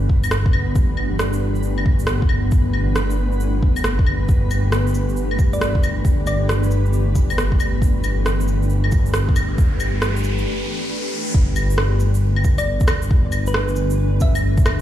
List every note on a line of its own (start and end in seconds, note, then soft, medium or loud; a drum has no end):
0.00 4.27 G1 medium
0.00 11.34 E3 medium
0.00 11.35 A3 medium
0.00 10.47 B3 medium
0.00 11.35 D4 medium
0.00 14.81 G4 medium
0.00 10.47 B4 medium
0.00 11.34 B4 medium
0.09 kick loud
0.24 claves medium
0.24 shaker medium
0.31 cross-stick loud
0.31 shaker medium
0.46 kick loud
0.53 claves medium
0.76 kick loud
0.76 shaker medium
0.97 claves soft
1.19 cross-stick loud
1.19 shaker medium
1.33 shaker medium
1.55 shaker soft
1.63 shaker medium
1.78 claves soft
1.86 kick loud
1.99 shaker medium
2.07 cross-stick loud
2.07 shaker medium
2.22 kick loud
2.29 claves medium
2.51 kick loud
2.51 shaker medium
2.73 claves soft
2.96 cross-stick loud
2.96 shaker medium
3.10 shaker medium
3.32 shaker soft
3.40 shaker medium
3.62 kick loud
3.76 claves medium
3.76 shaker medium
3.84 cross-stick loud
3.84 shaker medium
3.99 kick loud
4.07 claves medium
4.29 10.46 G1 medium
4.29 kick loud
4.29 shaker soft
4.51 cabasa medium
4.51 claves soft
4.72 cross-stick loud
4.72 shaker medium
4.87 shaker medium
4.95 cabasa medium
5.09 shaker soft
5.17 shaker soft
5.31 claves soft
5.39 kick loud
5.39 cabasa medium
5.53 5.76 D5 medium
5.53 shaker soft
5.61 cross-stick loud
5.61 shaker medium
5.75 kick loud
5.84 cabasa medium
5.84 claves medium
6.05 kick loud
6.05 shaker medium
6.27 6.63 D5 medium
6.27 cabasa medium
6.27 claves soft
6.49 cross-stick loud
6.49 shaker medium
6.63 shaker medium
6.71 cabasa medium
6.86 shaker soft
6.93 shaker soft
7.15 kick loud
7.15 cabasa medium
7.30 claves medium
7.30 shaker medium
7.38 cross-stick loud
7.38 shaker medium
7.52 kick medium
7.60 cabasa medium
7.60 claves medium
7.82 kick loud
7.82 riser medium
7.82 shaker medium
8.04 cabasa medium
8.04 claves medium
8.26 cross-stick loud
8.26 shaker medium
8.41 shaker medium
8.48 cabasa medium
8.62 shaker soft
8.70 shaker medium
8.84 claves medium
8.92 kick loud
8.92 cabasa medium
9.06 shaker soft
9.14 cross-stick loud
9.14 shaker medium
9.29 kick medium
9.36 cabasa medium
9.36 claves medium
9.58 kick loud
9.58 shaker medium
9.80 cabasa medium
9.80 claves medium
10.02 cross-stick loud
10.02 shaker medium
10.16 shaker medium
10.24 cabasa medium
10.38 shaker soft
11.34 14.81 G1 medium
11.34 14.81 E3 medium
11.34 kick loud
11.46 14.81 D4 medium
11.56 14.81 A3 medium
11.56 cabasa medium
11.56 claves medium
11.70 shaker medium
11.75 14.81 B4 medium
11.75 cross-stick loud
12.00 cabasa medium
12.14 shaker medium
12.36 claves medium
12.44 kick loud
12.44 cabasa medium
12.44 shaker soft
12.58 12.81 D5 medium
12.58 claves medium
12.58 shaker medium
12.80 kick loud
12.80 shaker soft
12.88 cross-stick loud
12.88 cabasa medium
12.88 claves medium
13.02 shaker medium
13.11 kick loud
13.32 cabasa medium
13.32 claves medium
13.46 13.70 B4 medium
13.46 shaker medium
13.54 cross-stick loud
13.68 shaker soft
13.76 cabasa medium
13.90 shaker medium
14.20 14.58 E5 medium
14.20 kick loud
14.20 cabasa medium
14.20 shaker soft
14.35 claves medium
14.35 shaker medium
14.57 kick loud
14.57 shaker soft
14.66 cross-stick loud
14.66 cabasa medium
14.66 claves medium